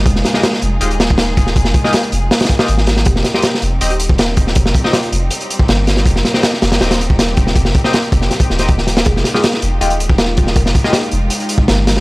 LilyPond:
<<
  \new Staff \with { instrumentName = "FM electric piano" } { \time 4/4 \key f \minor \tempo 4 = 160 r1 | r1 | g'8 r16 g'8 r4 g'8 r4 r16 | r8. f'4 r2 r16 |
r1 | r1 | aes'8 r16 aes'8 r2 f'8 r16 | bes'16 bes'16 r2. r8 | }
  \new Staff \with { instrumentName = "Synth stab" } { \time 4/4 \key f \minor r8. <aes f' g' ees''>16 r4 <aes f' g' ees''>16 r4. r16 | r8. <aes f' g' ees''>16 r4. r16 <aes f' g' ees''>16 r4 | r8. <c' ees' g' ees''>16 r4 <c' ees' g' ees''>16 r4. r16 | r8. <c' ees' g' ees''>16 r2. |
r8. <c' ees' g' ees''>16 r4 <c' ees' g' ees''>16 r4. r16 | r8. <c' ees' g' ees''>16 r4. r16 <c' ees' g' ees''>16 r4 | r8. <aes f' g' ees''>16 r4 <aes f' g' ees''>16 r4. r16 | r8. <aes f' g' ees''>16 r2. | }
  \new Staff \with { instrumentName = "String section" } { \time 4/4 \key f \minor << { aes'1~ | aes'1 | g'1~ | g'1~ |
g'1~ | g'1~ | g'1~ | g'1 | } \\ { <aes ees' f'>1~ | <aes ees' f'>1 | <g c' ees'>1~ | <g c' ees'>1~ |
<g c' ees'>1~ | <g c' ees'>1 | <aes ees' f'>1~ | <aes ees' f'>1 | } >> }
  \new Staff \with { instrumentName = "Sub bass" } { \clef bass \time 4/4 \key f \minor f,,8 r4 f,,8 ees,,2 | f,,8 r4 f,,8 r4 aes,,4 | f,,8 r4 f,,8 ees,,2 | f,,8 r4 f,,8 r4 g,,4 |
f,,8 r4 f,,8 ees,,2 | f,,8 r4 f,,8 r8 ees,,4. | f,,8 r4 f,,8 ees,,2 | f,,8 r4 f,,8 r4 g,,4 | }
  \new DrumStaff \with { instrumentName = "Drums" } \drummode { \time 4/4 <hh bd>16 sn16 <hh sn>16 sn16 <hh sn>16 sn16 hh8 hh16 hh16 <hh sn>16 bd16 <hh sn>8 <hh bd>16 sn16 | <hh bd>16 sn16 <hh bd>16 sn16 <hh sn>16 hh16 hh8 <hh sn>16 <hh sn>32 <hh sn>32 <hh bd>16 sn16 hh16 sn16 <hh sn>16 sn16 | <hh bd>16 sn16 <hh sn>16 sn16 <hh sn>16 sn16 hh8 hh16 hh16 hh16 bd16 <hh sn>8 <hh bd>16 sn16 | <hh bd>16 sn16 <hh bd>16 sn16 <hh sn>16 hh16 hh8 hh16 hh16 hh16 bd16 <hh sn>8 <hh sn>16 sn16 |
<hh bd>16 sn16 <hh sn>16 sn16 <hh sn>16 sn16 <hh sn>16 <hh sn>16 <hh sn>16 <hh sn>16 hh16 bd16 <hh sn>8 <hh bd>16 sn16 | <hh bd>16 sn16 <hh bd>16 sn16 <hh sn>16 hh16 <hh bd>16 sn16 <hh sn>16 <hh bd>16 sn16 <hh sn>16 <hh bd>16 sn16 <hh sn>16 <hh sn>16 | <hh bd>16 sn16 <hh sn>16 sn16 <hh sn>16 sn16 hh8 hh16 hh16 hh16 bd16 <hh sn>8 <hh bd>16 sn16 | <hh bd>16 sn16 <hh bd>16 sn16 <hh sn>16 hh16 hh8 hh16 hh16 hh16 bd16 <hh sn>8 <hh sn>16 sn16 | }
>>